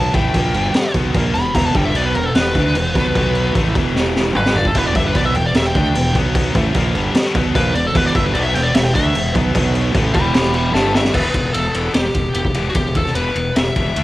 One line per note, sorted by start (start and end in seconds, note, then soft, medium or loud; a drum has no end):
0.00 0.11 B1 loud
0.00 0.14 B2 medium
0.00 0.14 F#3 medium
0.00 0.15 B3 medium
0.00 0.14 A5 medium
0.14 0.33 A1 loud
0.14 0.34 A2 medium
0.14 0.35 E3 loud
0.14 0.35 A3 loud
0.14 0.93 G5 medium
0.14 kick loud
0.14 crash medium
0.34 0.53 A#1 medium
0.34 0.54 A#2 medium
0.34 0.54 F3 loud
0.34 0.55 A#3 medium
0.34 kick loud
0.34 crash medium
0.54 0.73 G1 medium
0.54 0.75 G2 medium
0.54 0.75 D3 medium
0.54 0.75 G3 medium
0.54 crash medium
0.74 muted fingered electric bass stroke soft
0.74 muted distorted electric guitar stroke medium
0.74 muted overdriven electric guitar stroke medium
0.74 snare loud
0.74 crash medium
0.94 1.13 B1 medium
0.94 1.15 B2 medium
0.94 1.15 F#3 medium
0.94 1.15 B3 medium
0.94 kick loud
0.94 crash medium
1.14 1.33 A#1 loud
1.14 1.35 A#2 loud
1.14 1.35 F3 loud
1.14 1.35 A#3 loud
1.14 kick loud
1.14 crash medium
1.34 1.53 E1 medium
1.34 1.51 E2 medium
1.34 1.52 B2 medium
1.34 1.54 B5 medium
1.34 snare soft
1.34 crash medium
1.55 1.74 E1 loud
1.55 1.75 E2 medium
1.55 1.75 B2 loud
1.55 1.75 E3 loud
1.55 1.65 A#5 medium
1.55 kick medium
1.55 crash medium
1.65 1.76 A5 medium
1.75 1.93 G1 medium
1.75 1.95 G2 medium
1.75 1.95 D3 loud
1.75 1.96 G3 loud
1.75 1.86 G5 medium
1.75 kick loud
1.75 crash medium
1.85 1.96 E5 medium
1.95 2.14 B1 loud
1.95 2.15 B2 medium
1.95 2.16 F#3 medium
1.95 2.16 B3 loud
1.95 2.05 D5 medium
1.95 crash medium
2.05 2.15 B4 medium
2.15 2.34 E1 medium
2.15 2.32 E2 medium
2.15 2.32 B2 medium
2.15 2.26 A#4 medium
2.15 crash medium
2.26 2.35 A4 medium
2.35 2.54 E1 medium
2.35 2.52 E2 medium
2.35 2.52 B2 medium
2.35 3.52 B4 medium
2.35 snare loud
2.35 crash medium
2.55 2.74 D2 medium
2.55 2.75 D3 loud
2.55 2.75 A3 loud
2.55 2.76 D4 loud
2.55 kick medium
2.55 crash medium
2.75 2.94 E1 medium
2.75 2.92 E2 medium
2.75 2.92 B2 medium
2.75 crash medium
2.95 3.14 B1 medium
2.95 3.15 B2 medium
2.95 3.16 F#3 loud
2.95 3.16 B3 loud
2.95 kick loud
2.95 snare soft
2.95 crash medium
3.15 3.53 B1 loud
3.15 3.56 B2 loud
3.15 3.56 F#3 medium
3.15 3.56 B3 loud
3.15 kick loud
3.15 crash medium
3.35 crash medium
3.55 3.74 A1 loud
3.55 3.75 A2 loud
3.55 3.76 E3 loud
3.55 3.76 A3 loud
3.55 kick loud
3.55 crash medium
3.75 4.31 E1 medium
3.75 4.36 E2 medium
3.75 4.37 B2 medium
3.75 4.37 E3 medium
3.75 kick loud
3.75 crash medium
3.96 snare medium
4.16 snare medium
4.35 4.72 G1 medium
4.35 4.75 G2 loud
4.35 4.75 D3 medium
4.35 4.76 G3 loud
4.35 4.55 B4 loud
4.35 mid tom medium
4.46 snare medium
4.55 4.66 D5 medium
4.55 floor tom loud
4.65 4.77 A4 medium
4.65 kick medium
4.75 4.94 E1 medium
4.75 4.95 E2 loud
4.75 4.96 B2 loud
4.75 4.96 E3 loud
4.75 4.86 B4 loud
4.75 kick loud
4.75 crash medium
4.86 4.96 D5 loud
4.95 5.14 G1 loud
4.95 5.15 G2 medium
4.95 5.14 D3 loud
4.95 5.15 G3 loud
4.95 5.06 E5 medium
4.95 kick loud
4.95 crash medium
5.06 5.16 B4 loud
5.15 5.34 B1 medium
5.15 5.35 B2 loud
5.15 5.35 F#3 loud
5.15 5.35 B3 loud
5.15 5.25 D5 medium
5.15 kick medium
5.15 crash medium
5.25 5.35 E5 medium
5.35 5.54 E1 medium
5.35 5.52 E2 medium
5.35 5.52 B2 medium
5.35 5.45 G5 medium
5.35 crash medium
5.46 5.56 D5 medium
5.55 5.74 E1 medium
5.55 5.72 E2 medium
5.55 5.72 B2 medium
5.55 5.66 E5 loud
5.55 snare loud
5.55 crash medium
5.66 5.76 G5 medium
5.75 5.94 D2 medium
5.75 5.95 D3 loud
5.75 5.95 A3 loud
5.75 5.95 D4 loud
5.75 6.15 G5 medium
5.75 kick loud
5.75 crash medium
5.95 6.14 E1 medium
5.95 6.12 E2 medium
5.95 6.12 B2 medium
5.95 crash medium
6.15 6.52 B1 loud
6.15 6.55 B2 loud
6.15 6.56 F#3 loud
6.15 6.56 B3 loud
6.15 kick loud
6.15 crash medium
6.35 kick loud
6.35 crash medium
6.55 6.74 A1 loud
6.55 6.75 A2 medium
6.55 6.75 E3 loud
6.55 6.76 A3 loud
6.55 kick loud
6.55 crash medium
6.74 6.93 A#1 loud
6.74 6.95 A#2 medium
6.74 6.95 F3 loud
6.74 6.96 A#3 medium
6.74 kick loud
6.74 crash medium
6.94 7.13 G1 medium
6.94 7.15 G2 medium
6.94 7.15 D3 medium
6.94 7.15 G3 medium
6.94 crash medium
7.14 muted fingered electric bass stroke soft
7.14 muted overdriven electric guitar stroke medium
7.14 muted distorted electric guitar stroke medium
7.14 snare loud
7.14 crash medium
7.35 7.54 B1 loud
7.35 7.55 B2 medium
7.35 7.55 F#3 medium
7.35 7.55 B3 loud
7.35 kick loud
7.35 crash medium
7.55 7.73 A#1 loud
7.55 7.75 A#2 medium
7.55 7.75 F3 medium
7.55 7.75 A#3 loud
7.55 7.75 B4 loud
7.55 kick loud
7.55 crash medium
7.75 7.94 E1 medium
7.75 7.91 E2 medium
7.75 7.92 B2 medium
7.75 7.85 D5 loud
7.75 crash medium
7.87 7.96 A4 medium
7.95 8.13 E1 loud
7.95 8.14 E2 loud
7.95 8.15 B2 loud
7.95 8.15 E3 loud
7.95 8.06 B4 loud
7.95 kick loud
7.95 crash medium
8.06 8.15 D5 medium
8.15 8.33 G1 loud
8.15 8.34 G2 medium
8.15 8.35 D3 loud
8.15 8.35 G3 medium
8.15 8.25 E5 medium
8.15 kick loud
8.15 crash medium
8.25 8.35 B4 medium
8.34 8.53 B1 loud
8.34 8.54 B2 loud
8.34 8.55 F#3 loud
8.34 8.55 B3 loud
8.34 8.44 D5 loud
8.34 crash medium
8.43 8.54 E5 loud
8.54 8.73 E1 medium
8.54 8.71 E2 medium
8.54 8.71 B2 medium
8.54 8.64 G5 loud
8.54 crash medium
8.63 8.74 D5 medium
8.74 8.93 E1 medium
8.74 8.91 E2 medium
8.74 8.91 B2 medium
8.74 8.84 E5 loud
8.74 snare loud
8.74 crash medium
8.85 8.94 G5 loud
8.95 9.13 D2 loud
8.95 9.14 D3 loud
8.95 9.15 A3 loud
8.95 9.15 D4 loud
8.95 9.33 E5 medium
8.95 kick loud
8.95 crash medium
9.14 9.33 E1 medium
9.14 9.31 E2 medium
9.14 9.31 B2 medium
9.14 crash medium
9.35 9.53 B1 loud
9.35 9.54 B2 medium
9.35 9.54 F#3 loud
9.35 9.54 B3 loud
9.35 kick loud
9.35 crash medium
9.55 9.92 B1 loud
9.55 9.94 B2 loud
9.55 9.95 F#3 loud
9.55 9.95 B3 loud
9.55 kick loud
9.55 crash medium
9.75 crash medium
9.94 10.13 A1 medium
9.94 10.14 A2 loud
9.94 10.14 E3 medium
9.94 10.15 A3 loud
9.94 kick loud
9.94 crash medium
10.14 10.71 E1 medium
10.14 10.74 E2 medium
10.14 10.75 B2 medium
10.14 10.75 E3 medium
10.14 10.33 G5 loud
10.14 10.33 B5 loud
10.14 kick loud
10.14 crash medium
10.34 10.53 G5 medium
10.34 10.54 B5 loud
10.34 snare loud
10.34 crash medium
10.54 10.73 G5 medium
10.54 10.74 B5 medium
10.54 crash medium
10.74 11.11 G1 medium
10.74 11.14 G2 loud
10.74 11.14 D3 loud
10.74 11.15 G3 loud
10.74 10.93 E5 medium
10.74 10.94 A5 loud
10.74 snare medium
10.95 11.14 E5 medium
10.95 snare medium
11.05 snare medium
11.13 11.29 E1 medium
11.13 11.33 E2 medium
11.13 11.34 B2 medium
11.13 11.34 E3 medium
11.13 11.53 B4 loud
11.13 kick loud
11.13 crash loud
11.34 11.49 E1 medium
11.34 11.53 E2 medium
11.34 11.53 B2 medium
11.34 kick medium
11.34 ride medium
11.53 11.69 E1 medium
11.53 11.73 E2 medium
11.53 11.73 B2 medium
11.53 11.91 A4 medium
11.53 ride medium
11.74 11.89 E1 medium
11.74 11.94 E2 medium
11.74 11.94 B2 medium
11.74 11.94 E3 medium
11.74 ride medium
11.94 12.09 E1 medium
11.94 12.13 E2 medium
11.94 12.14 B2 medium
11.94 12.33 G4 medium
11.94 snare loud
11.94 ride medium
12.15 12.29 E1 medium
12.15 12.34 E2 medium
12.15 12.34 B2 medium
12.15 kick medium
12.15 ride medium
12.34 12.49 E1 medium
12.34 12.54 E2 medium
12.34 12.54 B2 medium
12.34 12.69 G4 medium
12.34 ride medium
12.45 kick medium
12.54 12.69 E1 medium
12.54 12.74 E2 medium
12.54 12.75 B2 medium
12.54 12.75 E3 medium
12.54 ride medium
12.69 12.75 F#4 medium
12.75 13.04 E1 medium
12.75 12.94 E2 medium
12.75 12.94 B2 medium
12.75 12.96 G4 medium
12.75 kick loud
12.75 ride loud
12.95 13.14 E2 medium
12.95 13.14 B2 medium
12.95 13.15 A4 medium
12.95 kick medium
12.95 ride medium
13.06 snare soft
13.15 13.30 E1 medium
13.15 13.35 E2 medium
13.15 13.35 B2 medium
13.15 13.36 E3 medium
13.15 13.57 B4 medium
13.15 ride medium
13.35 13.50 E1 medium
13.35 13.55 E2 medium
13.35 13.55 B2 medium
13.35 ride medium
13.56 13.71 E1 medium
13.56 13.75 E2 medium
13.56 13.75 B2 medium
13.56 14.04 E5 loud
13.56 snare loud
13.56 ride medium
13.76 13.91 E1 medium
13.76 13.95 E2 medium
13.76 13.96 B2 loud
13.76 13.96 E3 loud
13.76 kick medium
13.76 ride medium
13.96 14.04 D2 loud
13.96 14.04 D3 medium
13.96 14.04 A3 loud
13.96 14.04 D4 loud
13.96 ride medium